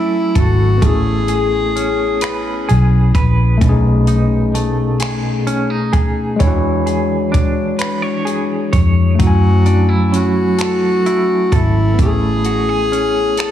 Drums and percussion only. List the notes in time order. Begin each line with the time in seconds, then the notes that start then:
0.35 kick, closed hi-hat
0.82 kick, closed hi-hat
1.28 closed hi-hat
1.76 closed hi-hat
2.21 finger snap, closed hi-hat
2.69 closed hi-hat
3.15 kick, closed hi-hat
3.61 kick, closed hi-hat
4.07 closed hi-hat
4.55 closed hi-hat
5.00 finger snap, closed hi-hat
5.47 closed hi-hat
5.93 kick, closed hi-hat
6.40 kick, closed hi-hat
6.87 closed hi-hat
7.34 kick, closed hi-hat
7.79 finger snap, closed hi-hat
8.27 closed hi-hat
8.73 kick, closed hi-hat
9.19 kick, closed hi-hat
9.66 closed hi-hat
10.13 closed hi-hat
10.58 finger snap, closed hi-hat
11.06 closed hi-hat
11.52 kick, closed hi-hat
11.99 kick, closed hi-hat
12.44 closed hi-hat
12.93 closed hi-hat
13.37 finger snap, closed hi-hat